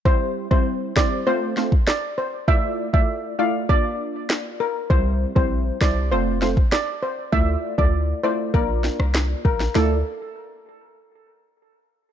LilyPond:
<<
  \new Staff \with { instrumentName = "Steel pan" } { \time 4/4 \key d \minor \tempo 4 = 99 c''16 r8 c''8 r16 d''8 c''8. r16 d''16 r16 c''16 r16 | e''16 r8 e''8 r16 f''8 d''8. r8. bes'16 r16 | c''16 r8 c''8 r16 d''8 c''8. r16 d''16 r16 c''16 r16 | e''16 r8 d''8 r16 c''8 bes'8. r8. bes'16 r16 |
a'8 r2. r8 | }
  \new Staff \with { instrumentName = "Synth stab" } { \time 4/4 \key d \minor <g c' e' c''>8. <g c' e' c''>8. <g c' e' c''>8 <a c' f' c''>8 <a c' f' c''>16 r4 r16 | <a e' f' d''>8. <a e' f' d''>8. <a e' f' d''>8 <bes d' f' d''>4.~ <bes d' f' d''>16 r16 | <g c' e' c''>8. <g c' e' c''>8. <g c' e' c''>8 <a c' f' c''>8 <a c' f' c''>16 r4 r16 | <a e' f' d''>8. <a e' f' d''>8. <a e' f' d''>8 <bes d' f' d''>4.~ <bes d' f' d''>16 r16 |
<a e' f' d''>8 r2. r8 | }
  \new Staff \with { instrumentName = "808-style bass" } { \clef bass \time 4/4 \key d \minor r1 | r1 | c,8. bes,,8. c,8 f,,4 r4 | d,8 r16 d,8. r8 bes,,8. c,8. bes,,8 |
d,8 r2. r8 | }
  \new DrumStaff \with { instrumentName = "Drums" } \drummode { \time 4/4 bd8. bd16 r8 <hc bd sn>8 r8 sn16 bd16 <hc sn>4 | bd8. bd16 r4 bd4 <hc sn>4 | bd8. bd16 r8 <hc bd sn>8 r8 sn16 bd16 <hc sn>4 | bd8. bd16 r4 bd8 sn16 ss16 <hc sn>8 bd16 sn16 |
sn4 r4 r4 r4 | }
>>